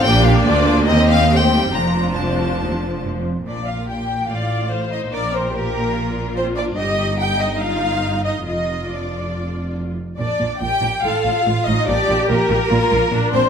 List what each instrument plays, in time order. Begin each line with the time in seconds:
0.04 double bass section A#1, cello section A#2, viola section A#3 D4, violin section G4 D5 G5
0.25 violin section F5
0.46 double bass section D2, cello section D2, violin section F4 D5
0.67 violin section F4
0.86 double bass section D#2, cello section D#2, viola section C4, violin section G4 D#5
1.09 violin section F5
1.31 viola section A3 C4, violin section G4 C5 G5
1.53 viola section G3
1.73 double bass section F1, cello section F2, viola section F3 D4, violin section F4 C5 A#5
2.17 cello section C2, violin section A5
2.61 cello section D#2
2.72 cello section F2
3.04 cello section G2
3.14 cello section F2
3.46 double bass section A#1, cello section A#2, violin section D4 D5
3.67 violin section F4 F5
3.89 violin section G4 G5
4.30 double bass section A1, cello section A2, violin section F4 F5, viola section D5
4.72 viola section C5
4.91 violin section D#4 D#5
5.13 double bass section A#1, cello section A#2, violin section D4 D5, viola section A#4
5.33 violin section C4 C5
5.53 violin section A#3 A#4, viola section G4
5.96 viola section F4
6.37 violin section C4 C5
6.57 violin section D4 D5
6.77 double bass section G1, cello section G2, violin section D#4 D#5, viola section G4
7.20 viola section D#4, violin section G4 G5
7.41 violin section D#4 D#5
7.62 violin section F4 F5
8.25 violin section D#4 D#5
8.47 double bass section F1, cello section F2, violin section D#4 D#5, viola section F4
8.89 violin section D4 D5
10.18 double bass section A#1, cello section A#2, violin section D4 D5
10.40 double bass section A#1, cello section A#2
10.60 double bass section A#1, cello section A#2, violin section G4 G5
10.82 double bass section A#1, cello section A#2
11.02 double bass section A1, cello section A2, violin section F4 F5, viola section A4
11.24 double bass section A1, cello section A2
11.45 double bass section A1, cello section A2, viola section F4
11.66 double bass section A1, cello section A2, violin section D#4 D#5
11.87 double bass section A#1, cello section A#2, violin section D4 D5, viola section G4
12.08 double bass section A#1, cello section A#2
12.28 double bass section A#1, cello section A#2, violin section A#3 A#4
12.50 double bass section A#1, cello section A#2
12.71 double bass section A#1, cello section A#2, viola section F4
12.92 double bass section A#1, cello section A#2
13.12 double bass section A#1, cello section A#2, viola section D4
13.31 double bass section A#1, cello section A#2, violin section C4 C5